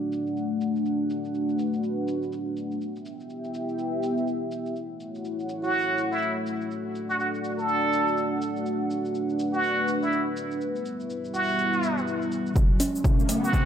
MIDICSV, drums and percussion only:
0, 0, Header, 1, 2, 480
1, 0, Start_track
1, 0, Tempo, 487805
1, 836, Time_signature, 4, 2, 24, 8
1, 13433, End_track
2, 0, Start_track
2, 0, Title_t, "Drums"
2, 120, Note_on_c, 9, 82, 95
2, 219, Note_off_c, 9, 82, 0
2, 264, Note_on_c, 9, 82, 39
2, 362, Note_off_c, 9, 82, 0
2, 362, Note_on_c, 9, 82, 53
2, 460, Note_off_c, 9, 82, 0
2, 601, Note_on_c, 9, 82, 92
2, 700, Note_off_c, 9, 82, 0
2, 745, Note_on_c, 9, 82, 38
2, 843, Note_off_c, 9, 82, 0
2, 843, Note_on_c, 9, 82, 52
2, 941, Note_off_c, 9, 82, 0
2, 1082, Note_on_c, 9, 82, 91
2, 1181, Note_off_c, 9, 82, 0
2, 1226, Note_on_c, 9, 82, 41
2, 1323, Note_off_c, 9, 82, 0
2, 1323, Note_on_c, 9, 82, 54
2, 1422, Note_off_c, 9, 82, 0
2, 1467, Note_on_c, 9, 82, 38
2, 1563, Note_off_c, 9, 82, 0
2, 1563, Note_on_c, 9, 82, 88
2, 1661, Note_off_c, 9, 82, 0
2, 1708, Note_on_c, 9, 82, 39
2, 1805, Note_off_c, 9, 82, 0
2, 1805, Note_on_c, 9, 82, 52
2, 1903, Note_off_c, 9, 82, 0
2, 2045, Note_on_c, 9, 82, 94
2, 2144, Note_off_c, 9, 82, 0
2, 2188, Note_on_c, 9, 82, 39
2, 2285, Note_off_c, 9, 82, 0
2, 2285, Note_on_c, 9, 82, 51
2, 2384, Note_off_c, 9, 82, 0
2, 2526, Note_on_c, 9, 82, 91
2, 2625, Note_off_c, 9, 82, 0
2, 2671, Note_on_c, 9, 82, 39
2, 2768, Note_off_c, 9, 82, 0
2, 2768, Note_on_c, 9, 82, 54
2, 2866, Note_off_c, 9, 82, 0
2, 2911, Note_on_c, 9, 82, 36
2, 3006, Note_off_c, 9, 82, 0
2, 3006, Note_on_c, 9, 82, 86
2, 3104, Note_off_c, 9, 82, 0
2, 3150, Note_on_c, 9, 82, 38
2, 3245, Note_off_c, 9, 82, 0
2, 3245, Note_on_c, 9, 82, 54
2, 3344, Note_off_c, 9, 82, 0
2, 3389, Note_on_c, 9, 82, 35
2, 3486, Note_off_c, 9, 82, 0
2, 3486, Note_on_c, 9, 82, 87
2, 3584, Note_off_c, 9, 82, 0
2, 3629, Note_on_c, 9, 82, 40
2, 3725, Note_off_c, 9, 82, 0
2, 3725, Note_on_c, 9, 82, 52
2, 3824, Note_off_c, 9, 82, 0
2, 3965, Note_on_c, 9, 82, 94
2, 4063, Note_off_c, 9, 82, 0
2, 4109, Note_on_c, 9, 82, 38
2, 4205, Note_off_c, 9, 82, 0
2, 4205, Note_on_c, 9, 82, 51
2, 4304, Note_off_c, 9, 82, 0
2, 4442, Note_on_c, 9, 82, 95
2, 4541, Note_off_c, 9, 82, 0
2, 4587, Note_on_c, 9, 82, 39
2, 4683, Note_off_c, 9, 82, 0
2, 4683, Note_on_c, 9, 82, 52
2, 4782, Note_off_c, 9, 82, 0
2, 4923, Note_on_c, 9, 82, 88
2, 5022, Note_off_c, 9, 82, 0
2, 5067, Note_on_c, 9, 82, 38
2, 5164, Note_off_c, 9, 82, 0
2, 5164, Note_on_c, 9, 82, 51
2, 5262, Note_off_c, 9, 82, 0
2, 5307, Note_on_c, 9, 82, 35
2, 5403, Note_off_c, 9, 82, 0
2, 5403, Note_on_c, 9, 82, 81
2, 5501, Note_off_c, 9, 82, 0
2, 5547, Note_on_c, 9, 82, 36
2, 5643, Note_off_c, 9, 82, 0
2, 5643, Note_on_c, 9, 82, 50
2, 5741, Note_off_c, 9, 82, 0
2, 5882, Note_on_c, 9, 82, 88
2, 5980, Note_off_c, 9, 82, 0
2, 6026, Note_on_c, 9, 82, 37
2, 6123, Note_off_c, 9, 82, 0
2, 6123, Note_on_c, 9, 82, 52
2, 6221, Note_off_c, 9, 82, 0
2, 6361, Note_on_c, 9, 82, 87
2, 6460, Note_off_c, 9, 82, 0
2, 6508, Note_on_c, 9, 82, 38
2, 6603, Note_off_c, 9, 82, 0
2, 6603, Note_on_c, 9, 82, 47
2, 6701, Note_off_c, 9, 82, 0
2, 6843, Note_on_c, 9, 82, 88
2, 6941, Note_off_c, 9, 82, 0
2, 6986, Note_on_c, 9, 82, 39
2, 7084, Note_off_c, 9, 82, 0
2, 7084, Note_on_c, 9, 82, 50
2, 7182, Note_off_c, 9, 82, 0
2, 7227, Note_on_c, 9, 82, 35
2, 7324, Note_off_c, 9, 82, 0
2, 7324, Note_on_c, 9, 82, 80
2, 7422, Note_off_c, 9, 82, 0
2, 7466, Note_on_c, 9, 82, 39
2, 7562, Note_off_c, 9, 82, 0
2, 7562, Note_on_c, 9, 82, 50
2, 7661, Note_off_c, 9, 82, 0
2, 7801, Note_on_c, 9, 82, 91
2, 7900, Note_off_c, 9, 82, 0
2, 7945, Note_on_c, 9, 82, 35
2, 8043, Note_off_c, 9, 82, 0
2, 8043, Note_on_c, 9, 82, 48
2, 8141, Note_off_c, 9, 82, 0
2, 8281, Note_on_c, 9, 82, 84
2, 8380, Note_off_c, 9, 82, 0
2, 8426, Note_on_c, 9, 82, 35
2, 8522, Note_off_c, 9, 82, 0
2, 8522, Note_on_c, 9, 82, 49
2, 8620, Note_off_c, 9, 82, 0
2, 8762, Note_on_c, 9, 82, 81
2, 8861, Note_off_c, 9, 82, 0
2, 8905, Note_on_c, 9, 82, 35
2, 9002, Note_off_c, 9, 82, 0
2, 9002, Note_on_c, 9, 82, 49
2, 9100, Note_off_c, 9, 82, 0
2, 9147, Note_on_c, 9, 82, 34
2, 9242, Note_off_c, 9, 82, 0
2, 9242, Note_on_c, 9, 82, 76
2, 9340, Note_off_c, 9, 82, 0
2, 9386, Note_on_c, 9, 82, 38
2, 9483, Note_off_c, 9, 82, 0
2, 9483, Note_on_c, 9, 82, 50
2, 9581, Note_off_c, 9, 82, 0
2, 9721, Note_on_c, 9, 82, 86
2, 9820, Note_off_c, 9, 82, 0
2, 9866, Note_on_c, 9, 82, 34
2, 9963, Note_off_c, 9, 82, 0
2, 9963, Note_on_c, 9, 82, 47
2, 10061, Note_off_c, 9, 82, 0
2, 10202, Note_on_c, 9, 82, 86
2, 10300, Note_off_c, 9, 82, 0
2, 10346, Note_on_c, 9, 82, 37
2, 10443, Note_off_c, 9, 82, 0
2, 10443, Note_on_c, 9, 82, 50
2, 10541, Note_off_c, 9, 82, 0
2, 10585, Note_on_c, 9, 82, 33
2, 10683, Note_off_c, 9, 82, 0
2, 10683, Note_on_c, 9, 82, 85
2, 10781, Note_off_c, 9, 82, 0
2, 10825, Note_on_c, 9, 82, 36
2, 10922, Note_off_c, 9, 82, 0
2, 10922, Note_on_c, 9, 82, 49
2, 11021, Note_off_c, 9, 82, 0
2, 11066, Note_on_c, 9, 82, 34
2, 11161, Note_off_c, 9, 82, 0
2, 11161, Note_on_c, 9, 82, 84
2, 11259, Note_off_c, 9, 82, 0
2, 11305, Note_on_c, 9, 82, 38
2, 11400, Note_off_c, 9, 82, 0
2, 11400, Note_on_c, 9, 82, 48
2, 11499, Note_off_c, 9, 82, 0
2, 11545, Note_on_c, 9, 82, 33
2, 11642, Note_off_c, 9, 82, 0
2, 11642, Note_on_c, 9, 82, 89
2, 11740, Note_off_c, 9, 82, 0
2, 11786, Note_on_c, 9, 82, 36
2, 11882, Note_off_c, 9, 82, 0
2, 11882, Note_on_c, 9, 82, 48
2, 11980, Note_off_c, 9, 82, 0
2, 12025, Note_on_c, 9, 82, 34
2, 12121, Note_off_c, 9, 82, 0
2, 12121, Note_on_c, 9, 82, 86
2, 12219, Note_off_c, 9, 82, 0
2, 12266, Note_on_c, 9, 82, 37
2, 12355, Note_on_c, 9, 47, 47
2, 12356, Note_on_c, 9, 36, 115
2, 12362, Note_off_c, 9, 82, 0
2, 12362, Note_on_c, 9, 82, 52
2, 12454, Note_off_c, 9, 36, 0
2, 12454, Note_off_c, 9, 47, 0
2, 12460, Note_off_c, 9, 82, 0
2, 12594, Note_on_c, 9, 46, 86
2, 12601, Note_on_c, 9, 82, 93
2, 12693, Note_off_c, 9, 46, 0
2, 12699, Note_off_c, 9, 82, 0
2, 12747, Note_on_c, 9, 82, 39
2, 12835, Note_on_c, 9, 47, 52
2, 12836, Note_on_c, 9, 36, 109
2, 12842, Note_off_c, 9, 82, 0
2, 12842, Note_on_c, 9, 82, 51
2, 12933, Note_off_c, 9, 47, 0
2, 12934, Note_off_c, 9, 36, 0
2, 12940, Note_off_c, 9, 82, 0
2, 12986, Note_on_c, 9, 82, 36
2, 13076, Note_on_c, 9, 46, 91
2, 13083, Note_off_c, 9, 82, 0
2, 13083, Note_on_c, 9, 82, 86
2, 13175, Note_off_c, 9, 46, 0
2, 13181, Note_off_c, 9, 82, 0
2, 13227, Note_on_c, 9, 82, 39
2, 13316, Note_on_c, 9, 36, 115
2, 13316, Note_on_c, 9, 47, 55
2, 13323, Note_off_c, 9, 82, 0
2, 13323, Note_on_c, 9, 82, 52
2, 13414, Note_off_c, 9, 36, 0
2, 13414, Note_off_c, 9, 47, 0
2, 13421, Note_off_c, 9, 82, 0
2, 13433, End_track
0, 0, End_of_file